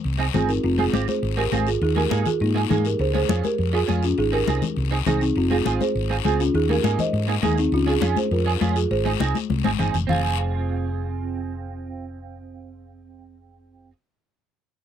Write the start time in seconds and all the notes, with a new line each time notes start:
Already playing: C5
0.04 C2, long guiro
0.19 C4 D#4 G#4, high conga
0.34 G1 C4 D#4 F4 G#4, high conga, low conga, short guiro
0.49 C4 D#4 A#4, short guiro
0.63 F1 C4 F4, high conga, long guiro
0.78 C4 F4 G#4, high conga
0.93 G#1 C4 F4 G4, high conga, short guiro
1.08 G#4 C5, high conga, short guiro
1.23 G#1, long guiro
1.37 C4 F4 G4 G#4 A#4, high conga
1.52 G#1 C4 F4 G#4, high conga, short guiro
1.67 F4 G#4, short guiro
1.82 D#2 D#4 G#4, high conga, long guiro
1.96 A#3 D#4 G4 G#4 A#4, high conga
2.10 G#2 A#3 D#4 G#4, high conga, short guiro
2.26 F4 G#4, low conga, short guiro
2.40 G#2 A#3 D#4, long guiro
2.55 A#3 D#4 G#4, high conga
2.70 G#2 A#3 D#4 G#4, high conga, low conga, short guiro
2.85 G4 A#4, short guiro
2.99 C#2 G#4 C5, high conga, long guiro
3.14 C#4 F4 G#4 C5, high conga
3.29 F2 C#4 F4 G#4, high conga, short guiro
3.44 G4 A#4, high conga, short guiro
3.58 F2, long guiro
3.73 C#4 F4 G#4, high conga
3.88 F2 C#4 F4 G#4, high conga, short guiro
4.03 C#4 F4, short guiro
4.18 G#1 D#4 G#4, high conga, long guiro
4.32 C4 D#4 G4 G#4 A#4
4.47 C2 C4 D#4 G#4, high conga, short guiro
4.62 high conga, low conga, short guiro
4.76 C2, long guiro
4.91 C4 D#4 G#4, high conga
5.06 C2 C4 D#4 G#4, high conga, low conga, short guiro
5.21 C4 D#4, short guiro
5.36 F1 C4 F4, high conga, long guiro
5.50 C4 F4 G#4, high conga
5.65 G#1 C4 F4 G#4, high conga, short guiro
5.81 G#4 C5, high conga, short guiro
5.95 G#1, long guiro
6.10 C4 F4 G#4, high conga
6.25 C#2 C4 F4 G#4, high conga, short guiro
6.40 C#4 F4, short guiro
6.54 D#2 D#4 G#4, high conga, long guiro
6.69 A#3 D#4 G4 G#4 A#4, high conga
6.84 G#2 A#3 D#4 G#4, high conga, short guiro
6.99 C5 D#5, high conga, low conga, short guiro
7.13 G#2, long guiro
7.28 A#3 D#4 G#4, high conga
7.42 D#2 A#3 D#4 G#4, high conga, low conga, short guiro
7.58 C4 D#4, short guiro
7.72 C#2 C#4 F4, high conga, long guiro
7.87 C#4 F4 G#4
8.01 F2 C#4 F4 G#4, high conga, short guiro
8.16 G#4 C5, high conga, short guiro
8.31 F2 F4 A#4, long guiro
8.46 C#4 F4 G#4, high conga
8.61 F2 C#4 F4 G#4, high conga, short guiro
8.76 F4 G#4, short guiro
8.91 G#1 G#4 C5, high conga, long guiro
9.05 C4 D#4 G#4, high conga
9.20 C2 C4 D#4 G#4, high conga, short guiro
9.35 high conga, short guiro
9.50 C2, high conga, long guiro
9.64 G#1 C4 D#4 G#4, high conga
9.79 G1 C4 D#4 G#4, low conga, short guiro
9.94 F1, low conga, short guiro
10.07 F1 C4 F4 F5, low conga, long guiro
10.11 G#4